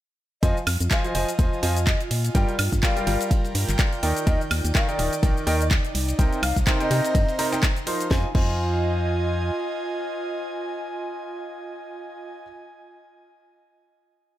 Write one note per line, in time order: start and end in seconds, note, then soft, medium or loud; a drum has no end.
0.43 0.53 F2 loud
0.43 0.56 F3 loud
0.43 0.56 F4 medium
0.43 4.80 F4 medium
0.43 0.56 C5 medium
0.43 0.57 D#5 loud
0.43 0.56 D#5 medium
0.43 0.56 G#5 loud
0.43 kick loud
0.43 closed hi-hat medium
0.43 ride medium
0.43 shaker medium
0.57 shaker soft
0.67 0.77 F2 medium
0.67 snare soft
0.67 open hi-hat loud
0.67 ride medium
0.67 high woodblock medium
0.74 2.35 D#5 medium
0.80 0.88 F2 medium
0.80 closed hi-hat medium
0.80 shaker medium
0.91 1.02 F3 loud
0.91 1.02 F4 loud
0.91 1.02 C5 loud
0.91 1.02 D#5 medium
0.91 1.05 F5 loud
0.91 1.02 G#5 loud
0.91 kick loud
0.91 snare loud
0.91 clap loud
0.91 closed hi-hat medium
0.91 ride loud
0.91 shaker medium
1.04 1.12 F3 medium
1.04 1.12 F4 medium
1.04 1.12 C5 medium
1.04 1.12 D#5 medium
1.04 1.12 G#5 medium
1.04 closed hi-hat soft
1.04 shaker soft
1.15 1.25 F1 medium
1.15 1.28 F3 medium
1.15 1.28 F4 medium
1.15 1.28 C5 medium
1.15 1.28 D#5 medium
1.15 1.28 G#5 medium
1.15 open hi-hat medium
1.15 ride medium
1.20 2.35 G#5 medium
1.29 closed hi-hat medium
1.29 shaker medium
1.39 1.49 D#2 medium
1.39 1.58 F3 medium
1.39 1.58 F4 medium
1.39 1.58 C5 medium
1.39 1.58 D#5 medium
1.39 1.58 G#5 medium
1.39 kick loud
1.39 closed hi-hat medium
1.39 ride medium
1.39 shaker medium
1.53 shaker soft
1.63 1.95 F2 loud
1.63 1.76 F3 medium
1.63 1.76 F4 medium
1.63 1.76 C5 medium
1.63 1.76 D#5 medium
1.63 1.76 G#5 loud
1.63 open hi-hat loud
1.63 ride medium
1.77 closed hi-hat medium
1.77 shaker medium
1.87 2.01 D#5 loud
1.87 kick loud
1.87 snare loud
1.87 clap loud
1.87 closed hi-hat medium
1.87 ride medium
1.87 shaker medium
2.00 closed hi-hat soft
2.00 shaker soft
2.11 2.30 A#2 medium
2.11 open hi-hat loud
2.11 ride medium
2.24 closed hi-hat medium
2.24 ride soft
2.24 shaker medium
2.35 2.45 G2 loud
2.35 2.54 G3 loud
2.35 2.54 F4 medium
2.35 2.54 A#4 medium
2.35 2.54 D5 medium
2.35 2.54 G5 loud
2.35 2.49 G5 loud
2.35 kick loud
2.35 closed hi-hat medium
2.35 ride medium
2.35 shaker medium
2.49 4.80 A#4 medium
2.49 closed hi-hat soft
2.49 shaker soft
2.59 2.69 G2 loud
2.59 open hi-hat loud
2.59 ride medium
2.59 high woodblock medium
2.72 2.80 G2 medium
2.72 kick medium
2.72 snare soft
2.72 closed hi-hat medium
2.72 shaker medium
2.83 2.93 G3 medium
2.83 2.93 F4 medium
2.83 2.93 A#4 medium
2.83 2.93 D5 medium
2.83 3.31 F5 loud
2.83 2.93 G5 medium
2.83 kick loud
2.83 snare loud
2.83 clap loud
2.83 closed hi-hat medium
2.83 ride medium
2.83 shaker medium
2.96 3.05 G3 medium
2.96 3.05 F4 medium
2.96 3.05 A#4 medium
2.96 3.05 D5 medium
2.96 3.05 G5 medium
2.96 closed hi-hat soft
2.96 shaker soft
3.04 3.17 G1 loud
3.04 3.76 G3 medium
3.04 3.76 F4 medium
3.04 3.76 A#4 medium
3.04 3.76 D5 medium
3.04 6.83 G5 medium
3.04 3.76 G5 medium
3.04 open hi-hat medium
3.04 ride medium
3.21 closed hi-hat medium
3.21 ride soft
3.21 shaker medium
3.31 kick loud
3.31 closed hi-hat medium
3.31 ride medium
3.31 shaker medium
3.45 ride soft
3.45 shaker soft
3.55 3.65 G2 loud
3.55 open hi-hat loud
3.55 ride medium
3.68 3.76 G1 medium
3.68 clap soft
3.68 closed hi-hat medium
3.68 ride soft
3.68 shaker medium
3.79 3.98 F4 medium
3.79 3.98 A#4 medium
3.79 3.98 D5 medium
3.79 3.98 G5 medium
3.79 kick loud
3.79 snare loud
3.79 clap loud
3.79 closed hi-hat medium
3.79 ride medium
3.79 shaker medium
3.93 closed hi-hat soft
3.93 shaker soft
4.03 4.13 D#2 medium
4.03 4.24 D#3 medium
4.03 8.11 D#4 medium
4.03 4.24 D#4 medium
4.03 4.24 A#4 medium
4.03 4.24 D5 medium
4.03 4.24 G5 medium
4.03 open hi-hat loud
4.03 ride medium
4.16 6.83 D5 medium
4.16 closed hi-hat medium
4.16 shaker medium
4.27 4.37 D#2 loud
4.27 4.40 D#3 loud
4.27 4.40 D#4 medium
4.27 4.40 A#4 medium
4.27 4.40 D5 medium
4.27 4.41 D#5 loud
4.27 4.40 G5 loud
4.27 kick loud
4.27 closed hi-hat medium
4.27 ride medium
4.27 shaker medium
4.41 shaker soft
4.51 4.61 D#2 loud
4.51 snare soft
4.51 open hi-hat loud
4.51 ride medium
4.51 high woodblock medium
4.64 4.72 D#2 medium
4.64 closed hi-hat medium
4.64 shaker medium
4.75 4.86 D#3 loud
4.75 4.86 D#4 medium
4.75 4.86 A#4 loud
4.75 4.86 D5 medium
4.75 4.89 F5 medium
4.75 4.86 G5 loud
4.75 kick loud
4.75 snare loud
4.75 clap loud
4.75 closed hi-hat medium
4.75 ride medium
4.75 shaker medium
4.88 4.96 D#3 medium
4.88 4.96 D#4 medium
4.88 4.96 A#4 medium
4.88 4.96 D5 medium
4.88 4.96 G5 loud
4.88 closed hi-hat soft
4.88 shaker soft
4.99 5.09 D#1 loud
4.99 5.12 D#3 medium
4.99 5.12 D#4 medium
4.99 5.12 A#4 medium
4.99 5.12 D5 medium
4.99 5.12 G5 medium
4.99 open hi-hat loud
4.99 ride medium
5.13 closed hi-hat medium
5.13 shaker medium
5.23 5.33 A#1 medium
5.23 5.42 D#3 medium
5.23 5.42 D#4 medium
5.23 5.42 A#4 medium
5.23 5.42 D5 medium
5.23 5.42 G5 medium
5.23 kick loud
5.23 closed hi-hat medium
5.23 ride medium
5.23 shaker medium
5.37 shaker soft
5.47 5.79 D#2 loud
5.47 5.60 D#3 loud
5.47 5.60 D#4 medium
5.47 5.60 A#4 medium
5.47 5.60 D5 medium
5.47 5.56 D#5 medium
5.47 5.60 G5 loud
5.47 open hi-hat loud
5.47 ride medium
5.60 5.67 D#5 medium
5.60 closed hi-hat soft
5.60 shaker medium
5.71 kick loud
5.71 snare loud
5.71 clap loud
5.71 closed hi-hat medium
5.71 ride medium
5.71 shaker medium
5.85 closed hi-hat soft
5.85 shaker soft
5.95 6.14 C2 medium
5.95 open hi-hat loud
5.95 ride medium
6.08 8.11 C5 medium
6.08 closed hi-hat medium
6.08 ride soft
6.08 shaker medium
6.19 6.29 C2 loud
6.19 6.38 C3 loud
6.19 6.38 D#4 medium
6.19 6.38 A#4 medium
6.19 6.38 C5 medium
6.19 6.38 G5 loud
6.19 kick loud
6.19 closed hi-hat medium
6.19 ride medium
6.19 shaker medium
6.26 8.11 A#5 medium
6.33 closed hi-hat soft
6.33 shaker soft
6.43 6.53 C2 medium
6.43 6.57 F5 medium
6.43 open hi-hat loud
6.43 ride medium
6.43 high woodblock medium
6.56 6.64 C2 medium
6.56 kick medium
6.56 snare soft
6.56 closed hi-hat soft
6.56 shaker medium
6.67 6.77 C3 medium
6.67 6.77 D#4 medium
6.67 6.77 A#4 medium
6.67 6.77 C5 medium
6.67 6.77 G5 loud
6.67 kick loud
6.67 snare loud
6.67 clap loud
6.67 closed hi-hat medium
6.67 ride medium
6.67 shaker medium
6.80 6.89 C3 medium
6.80 6.89 D#4 medium
6.80 6.89 A#4 medium
6.80 6.89 C5 medium
6.80 7.47 D#5 loud
6.80 6.89 G5 loud
6.80 closed hi-hat soft
6.80 shaker soft
6.91 7.37 C3 medium
6.91 7.01 C3 medium
6.91 7.37 D#4 medium
6.91 7.37 A#4 medium
6.91 7.37 C5 medium
6.91 7.37 G5 medium
6.91 open hi-hat loud
6.91 ride medium
7.04 closed hi-hat soft
7.04 ride soft
7.04 shaker medium
7.15 7.25 G2 medium
7.15 kick loud
7.15 closed hi-hat medium
7.15 ride medium
7.15 shaker medium
7.28 ride soft
7.28 shaker soft
7.39 7.49 C3 medium
7.39 7.49 D#4 medium
7.39 7.49 A#4 medium
7.39 7.49 C5 medium
7.39 7.49 A#5 loud
7.39 open hi-hat loud
7.39 ride medium
7.52 7.62 C3 loud
7.52 7.62 D#4 medium
7.52 7.62 A#4 medium
7.52 7.62 C5 medium
7.52 7.62 G5 loud
7.52 clap soft
7.52 closed hi-hat soft
7.52 ride soft
7.52 shaker medium
7.63 kick loud
7.63 snare loud
7.63 clap loud
7.63 closed hi-hat medium
7.63 ride medium
7.63 shaker medium
7.76 closed hi-hat soft
7.76 shaker soft
7.87 8.06 F3 medium
7.87 8.06 D#4 medium
7.87 8.06 A#4 medium
7.87 8.06 C5 medium
7.87 8.06 C6 medium
7.87 open hi-hat loud
7.87 ride medium
8.00 closed hi-hat medium
8.00 shaker medium
8.11 8.25 F2 loud
8.11 8.25 F4 medium
8.11 12.19 F4 medium
8.11 8.25 C5 medium
8.11 8.25 D#5 medium
8.11 8.25 G#5 loud
8.11 kick loud
8.11 snare medium
8.19 12.27 D#5 medium
8.27 12.35 G#5 medium
8.35 9.51 F2 loud
8.35 12.43 F4 medium
8.35 12.43 C5 medium
8.35 12.43 D#5 medium
8.35 12.43 G#5 medium
8.35 kick loud
8.35 crash medium